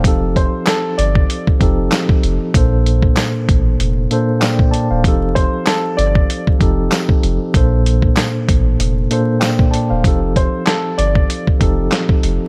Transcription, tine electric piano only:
Already playing: C5 F5
0.05 F3 C4 D#4 G4 A4
1.59 F3 C4 D#4 G4 A4
2.54 A#2 A#3 D4 A4 C5
4.10 A#2 A#3 D4 A4 C5
4.40 D5 G5
4.71 D5 A5
4.90 C5 F5
5.05 F3 C4 D#4 G4 A4
6.59 F3 C4 D#4 G4 A4
7.54 A#2 A#3 D4 A4 C5
9.10 A#2 A#3 D4 A4 C5
9.40 D5 G5
9.71 D5 A5
9.90 C5 F5
10.05 F3 C4 D#4 G4 A4
11.59 F3 C4 D#4 G4 A4

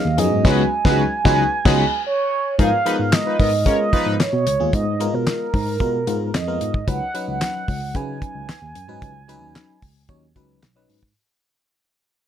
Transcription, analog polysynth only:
0.44 G#3 F#4 B4
0.84 G#3 F#4 B4
1.25 G#3 F#4 B4
1.65 G#3 F#4 B4
2.59 F3 D#4 G#4
2.85 F3 D#4 B4
3.26 F3 D#4 B4
3.39 B3 A#4 D#5
3.65 C#4 A#4 C#5
3.93 F3 D#4 B4

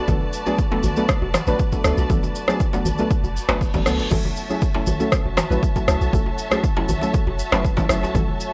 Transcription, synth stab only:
0.08 F#3 A3 B3 D4 A4
0.46 F#3 A3 B3 D4 G#4
0.71 F#3 A3 B3 D4 A4
0.97 F#3 A3 B3 D4 A4
1.47 F#3 A3 B3 D4 B4
1.72 F#3 A3 B3 D4 A4
1.85 F#3 A3 B3 D4 A4
2.10 F#3 A3 B3 D4 A4
2.48 F#3 A3 B3 D4 G#4
2.73 F#3 A3 B3 D4 A4
2.99 F#3 A3 B3 D4 A4
3.49 F#3 A3 B3 D4 B4
3.74 F#3 A3 B3 D4 A4
3.86 F#3 A3 B3 D4 A4
4.12 F#3 A3 C#4 E4 A4
4.50 F#3 A3 C#4 E4 G#4
4.75 F#3 A3 C#4 E4 A4
5.00 F#3 A3 C#4 E4 A4
5.51 F#3 A3 C#4 E4 B4
5.76 F#3 A3 C#4 E4 A4
5.88 F#3 A3 C#4 E4 A4
6.13 F#3 A3 C#4 E4 A4
6.52 F#3 A3 C#4 E4 G#4
6.77 F#3 A3 C#4 E4 A4
7.02 F#3 A3 C#4 E4 A4
7.52 F#3 A3 C#4 E4 B4
7.77 F#3 A3 C#4 E4 A4
7.89 F#3 A3 C#4 E4 A4
8.15 F#3 A3 C#4 E4 A4

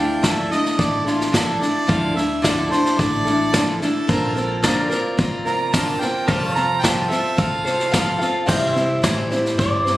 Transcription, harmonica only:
Already playing: G5
0.24 E5
0.51 D#5
0.79 D5
1.07 F4
1.34 A4
1.61 D5
1.91 F5
2.16 E5
2.44 D5
2.71 C5
2.99 D5
3.82 A4
5.46 A#5
5.73 A5
6.00 G5
6.27 A5
6.55 A#5
6.82 G5
7.11 E5
7.39 F5

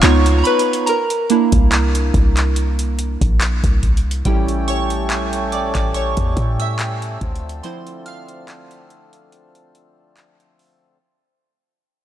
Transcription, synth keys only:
0.01 B3 D#4 F4 C#5 C#6
0.38 A#5
0.44 B4 B5
0.86 A#4 A#5
1.30 A#3 D4 E4
4.26 G3 C#4 E4 G4 G5
4.68 C#5 C#6
5.52 D5 D6
5.75 D5 D6
5.94 C#5 C#6
6.60 E5 E6
7.63 F3 C4 E4 C5 C6
8.06 F5 F6

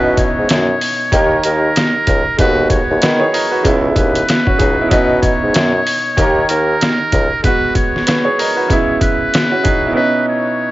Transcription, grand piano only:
Already playing: B2 B3 C#4 D#4
1.12 D#3 D#4 G4
1.16 A#4
2.37 G#3 B3
2.42 F#4
3.02 F#4 B4
3.20 G#4 C#5
3.33 A#4 D#5
3.51 F#4 B4
3.63 C#3 G#3 B3
3.67 E4
4.47 C#4 F#4
4.58 D#4 G#4
4.81 B3 E4
4.88 B2 B3 C#4
4.92 D#4
6.17 D#3 D#4 G4
6.21 A#4
7.43 G#3 B3
7.47 F#4
8.07 F#4 B4
8.25 G#4 C#5
8.38 A#4 D#5
8.57 F#4 B4
8.68 C#3 G#3 B3
8.73 E4
9.52 C#4 F#4
9.63 D#4 G#4
9.86 B3 E4
9.92 B2 B3 C#4
9.97 D#4

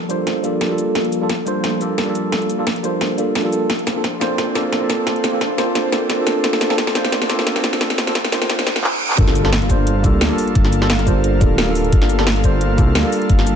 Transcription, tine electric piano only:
0.08 G3 A#3 D4 F4 C5
0.43 G3 A#3 D4 F4 A4
0.68 G3 A#3 D4 F4
0.73 A4
1.21 G3 A#3 D4 F4 A4
1.46 G3 A#3 D4 F4 C5
1.80 G3 A#3 D4 F4 A4
2.05 G3 A#3 D4 F4
2.10 A4
2.58 G3 A#3 D4 F4 A4
2.83 G3 A#3 D4 F4 C5
3.17 G3 A#3 D4 F4 A4
3.43 G3 A#3 D4 F4 A4
3.95 A#3 C4 D4 F4 A4
4.20 A#3 C4 D4 F4 C5
4.54 A#3 C4 D4 F4 A4
4.79 A#3 C4 D4 F4
4.84 A4
5.32 A#3 C4 D4 F4 A4
5.57 A#3 C4 D4 F4 C5
5.91 A#3 C4 D4 F4 A4
6.17 A#3 C4 D4 F4
6.21 A4
6.69 A#3 C4 D4 F4 A4
6.94 A#3 C4 D4 F4 C5
7.29 A#3 C4 D4 F4 A4
7.54 A#3 C4 D4 F4
7.58 A4
8.06 A#3 C4 D4 F4 A4
8.31 A#3 C4 D4 F4 C5
9.17 G3 A#3 D4 F4 A4
9.43 G3 A#3 D4 F4 A4
9.69 G3 A#3 D4 F4 C5
10.03 G3 A#3 D4 F4 A4
10.28 G3 A#3 D4 F4
10.33 A4
10.81 G3 A#3 D4 F4 A4
11.06 G3 A#3 D4 F4 C5
11.40 G3 A#3 D4 F4 A4
11.65 G3 A#3 D4 F4
11.70 A4
12.18 G3 A#3 D4 F4 A4
12.43 G3 A#3 D4 F4 C5
12.77 G3 A#3 D4 F4 A4
13.02 G3 A#3 D4 F4
13.07 A4

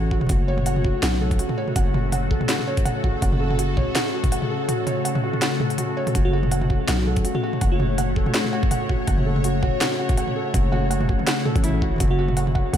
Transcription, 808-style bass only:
Already playing: A1
0.21 E1
0.30 F#1
1.03 B1
1.76 F#1
3.22 F#1
6.15 F#1
6.89 B1
7.62 F#1
9.08 F#1
10.54 F#1
11.56 A1
11.92 E1
12.00 F#1
12.73 B1

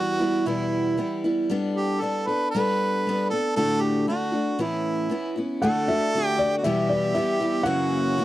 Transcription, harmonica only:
Already playing: F#4
0.47 E4
1.76 G4
2.01 A4
2.26 B4
2.51 B4
3.30 A4
3.56 A4
3.81 G4
4.08 F#4
4.61 E4
5.62 A4
6.26 G4
6.57 F#4
6.65 G4
7.67 F#4

